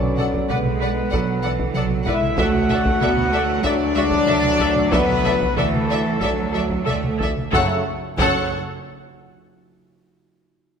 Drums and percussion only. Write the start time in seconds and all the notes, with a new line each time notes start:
0.03 taiko mid
0.18 taiko mid
0.34 taiko
0.50 taiko mid
0.65 taiko mid
1.13 taiko
1.59 taiko
1.74 taiko mid
1.90 taiko mid
2.06 taiko
2.22 taiko mid
2.38 taiko
2.54 taiko mid
2.70 taiko mid
2.86 taiko
3.01 taiko mid
3.17 taiko mid
3.64 taiko
4.11 taiko
4.27 taiko mid
4.43 taiko mid
4.59 taiko
4.76 taiko mid
4.92 taiko
5.08 taiko mid
5.24 taiko mid
5.40 taiko
5.57 taiko mid
5.73 taiko mid
6.21 taiko
6.70 taiko
6.87 taiko mid
7.04 taiko mid
7.20 taiko
7.37 taiko mid
7.53 taiko
8.18 taiko